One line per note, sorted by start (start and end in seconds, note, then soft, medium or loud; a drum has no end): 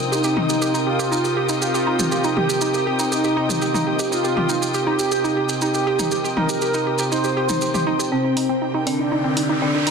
0.00 8.08 C3 medium
0.00 8.08 C4 medium
0.00 9.91 C4 medium
0.00 8.08 F4 medium
0.00 8.12 A#4 medium
0.00 9.91 G5 medium
0.00 8.12 D#6 medium
0.12 0.77 D#4 loud
0.12 8.08 D#4 medium
0.12 0.17 G4 medium
0.12 8.08 G4 medium
0.12 maracas medium
0.24 0.36 G4 loud
0.24 maracas soft
0.37 0.45 D#4 loud
0.37 mid tom medium
0.49 0.54 G4 medium
0.49 maracas medium
0.62 0.74 G4 loud
0.62 maracas medium
0.74 0.82 D#4 medium
0.74 maracas soft
0.87 1.52 F4 medium
0.87 0.92 G4 medium
0.99 1.11 G4 loud
0.99 maracas medium
1.12 1.20 D#4 medium
1.12 maracas medium
1.24 1.29 G4 medium
1.24 maracas soft
1.37 1.49 G4 medium
1.49 1.57 D#4 medium
1.49 maracas medium
1.62 2.27 F4 medium
1.62 1.67 G4 medium
1.62 maracas medium
1.74 1.86 G4 loud
1.74 maracas soft
1.87 1.95 D#4 loud
1.99 2.04 G4 medium
1.99 mid tom medium
1.99 maracas medium
2.12 2.24 G4 medium
2.12 maracas medium
2.24 2.32 D#4 loud
2.24 maracas soft
2.37 2.42 G4 medium
2.37 3.02 G4 loud
2.37 mid tom medium
2.49 2.61 G4 loud
2.49 maracas medium
2.61 2.70 D#4 medium
2.61 maracas medium
2.74 2.79 G4 medium
2.74 maracas soft
2.87 2.99 G4 loud
2.99 3.07 D#4 loud
2.99 maracas medium
3.12 4.02 D#4 medium
3.12 3.17 G4 medium
3.12 maracas medium
3.24 3.36 G4 loud
3.24 maracas soft
3.37 3.45 D#4 loud
3.49 3.54 G4 medium
3.49 mid tom medium
3.49 maracas medium
3.62 3.74 G4 loud
3.62 maracas medium
3.74 3.82 D#4 loud
3.74 mid tom medium
3.74 maracas soft
3.87 3.92 G4 medium
3.99 4.11 G4 loud
3.99 maracas medium
4.12 4.20 D#4 medium
4.12 4.77 F4 loud
4.12 maracas medium
4.24 4.29 G4 medium
4.24 maracas soft
4.37 4.49 G4 loud
4.37 mid tom medium
4.49 4.57 D#4 medium
4.49 maracas medium
4.62 4.67 G4 medium
4.62 maracas medium
4.74 4.86 G4 loud
4.74 maracas soft
4.87 4.95 D#4 loud
4.87 5.52 G4 loud
4.99 5.04 G4 medium
4.99 maracas medium
5.12 5.24 G4 medium
5.12 maracas medium
5.24 5.32 D#4 medium
5.24 maracas soft
5.37 5.42 G4 medium
5.49 5.61 G4 medium
5.49 maracas medium
5.62 5.70 D#4 loud
5.62 6.27 G4 medium
5.62 maracas medium
5.74 5.79 G4 medium
5.74 maracas soft
5.87 5.99 G4 loud
5.99 6.07 D#4 loud
5.99 mid tom medium
5.99 maracas medium
6.11 6.17 G4 medium
6.11 maracas medium
6.24 6.36 G4 loud
6.24 maracas soft
6.37 6.45 D#4 medium
6.37 7.02 A#4 loud
6.37 mid tom medium
6.49 6.54 G4 medium
6.49 maracas medium
6.61 6.74 G4 loud
6.61 maracas medium
6.74 6.82 D#4 medium
6.74 maracas soft
6.87 6.92 G4 medium
6.98 7.11 G4 loud
6.98 maracas medium
7.12 7.20 D#4 medium
7.12 8.02 C5 loud
7.12 maracas medium
7.24 7.29 G4 medium
7.24 maracas soft
7.37 7.49 G4 loud
7.49 7.57 D#4 medium
7.49 mid tom medium
7.49 maracas medium
7.61 7.67 G4 medium
7.61 maracas medium
7.74 7.86 G4 loud
7.74 mid tom medium
7.74 maracas soft
7.87 7.95 D#4 loud
7.99 8.04 G4 medium
7.99 maracas medium
8.12 8.77 C3 medium
8.12 9.91 C3 medium
8.12 9.91 C4 medium
8.12 8.20 C4 medium
8.12 8.77 C4 loud
8.12 9.91 G4 medium
8.12 8.77 C5 medium
8.12 riser medium
8.24 8.29 D#4 medium
8.24 9.91 A#4 medium
8.37 8.49 D#4 loud
8.37 open hi-hat loud
8.49 8.57 C4 loud
8.62 8.67 D#4 medium
8.74 8.86 D#4 loud
8.87 9.52 D3 medium
8.87 8.95 C4 loud
8.87 9.52 D4 loud
8.87 9.52 D5 medium
8.87 open hi-hat medium
8.99 9.04 D#4 medium
9.12 9.24 D#4 loud
9.24 9.32 C4 medium
9.37 9.42 D#4 medium
9.37 open hi-hat loud
9.49 9.61 D#4 loud
9.62 9.91 D3 medium
9.62 9.70 C4 loud
9.62 9.91 D4 medium
9.62 9.91 D5 medium
9.74 9.79 D#4 medium
9.87 9.91 D#4 loud
9.87 open hi-hat medium